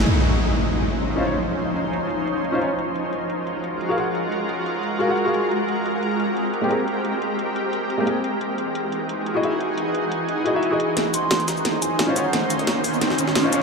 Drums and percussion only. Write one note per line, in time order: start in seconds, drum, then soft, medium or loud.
0.06 closed hi-hat medium
0.06 crash medium
0.40 closed hi-hat medium
0.57 closed hi-hat medium
0.74 closed hi-hat medium
0.91 closed hi-hat medium
1.08 closed hi-hat medium
1.25 closed hi-hat medium
1.42 closed hi-hat medium
1.59 closed hi-hat medium
1.76 closed hi-hat medium
1.93 closed hi-hat medium
2.10 closed hi-hat medium
2.27 closed hi-hat medium
2.45 closed hi-hat medium
2.62 closed hi-hat medium
2.79 closed hi-hat medium
2.96 closed hi-hat medium
3.13 closed hi-hat medium
3.30 closed hi-hat medium
3.47 closed hi-hat medium
3.64 closed hi-hat medium
3.81 closed hi-hat medium
3.98 closed hi-hat medium
4.15 closed hi-hat medium
4.32 closed hi-hat medium
4.49 closed hi-hat medium
4.66 closed hi-hat medium
4.83 closed hi-hat medium
5.00 closed hi-hat medium
5.17 closed hi-hat medium
5.34 closed hi-hat medium
5.51 closed hi-hat medium
5.69 closed hi-hat medium
5.86 closed hi-hat medium
6.03 closed hi-hat medium
6.20 closed hi-hat medium
6.37 closed hi-hat medium
6.54 closed hi-hat medium
6.71 closed hi-hat medium
6.88 closed hi-hat medium
7.05 closed hi-hat medium
7.22 closed hi-hat medium
7.39 closed hi-hat medium
7.56 closed hi-hat medium
7.73 closed hi-hat medium
7.90 closed hi-hat medium
8.07 closed hi-hat medium
8.24 closed hi-hat medium
8.41 closed hi-hat medium
8.58 closed hi-hat medium
8.75 closed hi-hat medium
8.92 closed hi-hat medium
9.09 closed hi-hat medium
9.26 closed hi-hat medium
9.43 closed hi-hat medium
9.61 closed hi-hat medium
9.78 closed hi-hat medium
9.95 closed hi-hat medium
10.12 closed hi-hat medium
10.29 closed hi-hat medium
10.46 closed hi-hat medium
10.63 closed hi-hat medium
10.80 closed hi-hat medium
10.97 snare soft
10.97 closed hi-hat medium
11.14 closed hi-hat medium
11.14 shaker medium
11.31 snare loud
11.31 snare soft
11.31 closed hi-hat medium
11.40 closed hi-hat soft
11.48 snare soft
11.48 closed hi-hat medium
11.48 shaker medium
11.57 shaker soft
11.65 snare soft
11.65 closed hi-hat medium
11.82 closed hi-hat medium
11.82 shaker medium
11.99 snare soft
11.99 snare loud
11.99 closed hi-hat medium
12.16 closed hi-hat medium
12.16 shaker medium
12.33 snare soft
12.33 closed hi-hat medium
12.50 closed hi-hat medium
12.50 shaker medium
12.59 closed hi-hat soft
12.67 snare medium
12.67 snare loud
12.67 closed hi-hat medium
12.84 closed hi-hat medium
12.84 open hi-hat medium
12.84 shaker medium
12.93 shaker soft
13.01 snare medium
13.01 closed hi-hat medium
13.10 snare soft
13.18 closed hi-hat medium
13.18 shaker medium
13.28 snare soft
13.35 snare loud
13.35 snare medium
13.35 closed hi-hat medium
13.35 open hi-hat medium
13.53 closed hi-hat medium
13.53 shaker medium